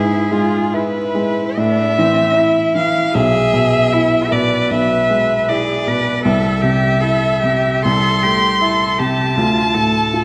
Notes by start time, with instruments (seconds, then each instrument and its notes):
Already playing: grand piano G#2, cello E4, violin G#4
0.31 grand piano G#3, cello F4
0.73 grand piano E4, cello E4, violin B4
1.15 grand piano G#3
1.57 grand piano A2, cello D4, violin E5
1.98 grand piano E3, cello C4
2.37 grand piano E4, cello E4
2.75 grand piano E3, violin F5
3.14 grand piano B1, cello G#4, violin E5
3.53 grand piano B2
3.93 cello E4, grand piano E4
4.31 grand piano B2, cello B4, violin D5
4.70 grand piano B1, violin E5
5.10 grand piano G#3
5.48 grand piano E4, cello G#4, violin D5
5.88 grand piano B2, cello B4
6.24 grand piano C2, cello A4, violin E5
6.62 grand piano C3, cello G4
7.00 grand piano E4, cello A4
7.43 grand piano C3, cello G4
7.82 grand piano C2, cello A4, violin C6
8.23 grand piano A3, cello G4
8.61 grand piano E4, cello A4
8.98 grand piano C3, cello G4, violin A5
9.36 grand piano D2, cello F4
9.74 grand piano A2, cello A4
10.14 grand piano F4